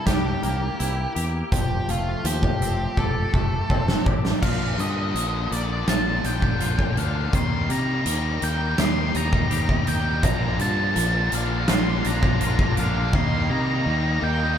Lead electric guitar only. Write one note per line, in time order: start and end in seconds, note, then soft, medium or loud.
0.07 1.12 G4 medium
1.53 1.90 G4 medium
1.90 2.27 F4 medium
2.26 2.99 G4 medium
2.99 4.03 A4 loud
4.43 4.80 F5 medium
4.80 5.52 D#5 medium
5.53 5.90 D5 medium
5.89 6.26 A5 medium
6.26 6.98 G5 medium
6.98 7.35 F5 medium
7.35 7.71 C6 loud
7.71 8.45 A#5 loud
8.44 8.80 G5 medium
8.81 9.13 C6 loud
9.17 9.90 A#5 loud
9.89 10.22 G5 medium
10.24 10.61 A#5 loud
10.61 11.35 A5 loud
11.35 11.67 F5 medium
11.70 12.06 C6 loud
12.07 12.74 A#5 loud
12.79 13.16 F5 medium
13.15 13.51 C6 loud
13.51 14.25 A#5 loud
14.23 14.58 G5 medium